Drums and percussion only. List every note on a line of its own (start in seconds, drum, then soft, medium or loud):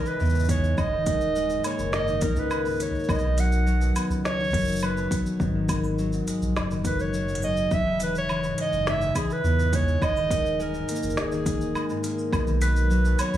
0.06 shaker soft
0.20 shaker soft
0.25 shaker soft
0.30 shaker soft
0.35 shaker soft
0.40 shaker soft
0.44 shaker soft
0.49 kick loud
0.49 closed hi-hat medium
0.49 shaker medium
0.64 shaker soft
0.78 kick loud
0.78 low woodblock medium
0.78 shaker soft
1.06 kick loud
1.06 closed hi-hat medium
1.06 shaker medium
1.21 shaker soft
1.36 shaker soft
1.50 shaker soft
1.64 closed hi-hat medium
1.64 low woodblock medium
1.64 shaker medium
1.79 shaker soft
1.93 snare medium
1.93 shaker soft
2.08 shaker soft
2.21 kick loud
2.21 closed hi-hat medium
2.21 shaker medium
2.36 shaker soft
2.51 low woodblock medium
2.51 shaker soft
2.65 shaker soft
2.68 shaker soft
2.71 shaker soft
2.73 shaker soft
2.75 shaker soft
2.78 closed hi-hat medium
2.78 shaker soft
2.80 shaker medium
2.95 shaker soft
2.99 shaker soft
3.04 shaker soft
3.09 kick loud
3.09 low woodblock medium
3.09 shaker soft
3.14 shaker soft
3.19 shaker soft
3.38 closed hi-hat medium
3.38 shaker medium
3.52 shaker soft
3.67 shaker soft
3.81 shaker soft
3.96 closed hi-hat medium
3.96 low woodblock medium
3.96 shaker medium
4.11 shaker soft
4.25 snare medium
4.25 shaker soft
4.40 shaker soft
4.44 shaker soft
4.47 shaker soft
4.50 kick loud
4.50 closed hi-hat medium
4.50 shaker soft
4.54 shaker soft
4.57 shaker soft
4.61 shaker soft
4.64 shaker soft
4.68 shaker medium
4.72 shaker medium
4.76 shaker medium
4.79 low woodblock medium
4.79 shaker medium
4.83 shaker soft
4.97 shaker soft
5.11 kick medium
5.11 closed hi-hat medium
5.11 shaker medium
5.26 shaker soft
5.40 kick loud
5.40 shaker soft
5.69 kick medium
5.69 closed hi-hat medium
5.69 low woodblock medium
5.69 shaker medium
5.84 shaker soft
5.99 shaker soft
6.13 shaker soft
6.28 closed hi-hat medium
6.28 shaker medium
6.42 shaker soft
6.56 snare medium
6.56 low woodblock medium
6.56 shaker soft
6.71 shaker soft
6.85 kick medium
6.85 closed hi-hat medium
6.85 shaker medium
7.00 shaker soft
7.14 shaker soft
7.28 shaker soft
7.35 closed hi-hat medium
7.42 shaker medium
7.57 shaker soft
7.71 kick loud
7.71 shaker soft
8.00 closed hi-hat medium
8.00 shaker medium
8.15 shaker soft
8.29 low woodblock medium
8.29 shaker soft
8.44 shaker soft
8.58 closed hi-hat medium
8.73 shaker soft
8.87 snare medium
8.87 shaker soft
9.01 shaker soft
9.15 kick medium
9.15 closed hi-hat medium
9.15 low woodblock medium
9.15 shaker medium
9.30 shaker soft
9.45 shaker soft
9.59 shaker soft
9.73 kick loud
9.73 closed hi-hat medium
9.73 shaker medium
9.88 shaker soft
10.02 kick loud
10.02 low woodblock medium
10.02 shaker soft
10.17 shaker soft
10.31 kick loud
10.31 closed hi-hat medium
10.31 shaker medium
10.46 shaker soft
10.60 shaker soft
10.74 shaker soft
10.89 closed hi-hat medium
10.89 shaker medium
10.96 shaker medium
11.03 shaker soft
11.10 shaker soft
11.17 snare medium
11.17 shaker soft
11.32 shaker soft
11.46 kick loud
11.46 closed hi-hat medium
11.46 shaker medium
11.61 shaker soft
11.75 low woodblock medium
11.75 shaker soft
11.90 shaker soft
12.04 closed hi-hat medium
12.04 shaker medium
12.19 shaker soft
12.33 kick loud
12.33 low woodblock medium
12.33 shaker soft
12.47 shaker soft
12.62 closed hi-hat medium
12.62 shaker medium
12.76 shaker soft
12.91 shaker soft
13.05 shaker soft
13.19 closed hi-hat medium
13.19 low woodblock medium
13.19 shaker medium
13.34 shaker soft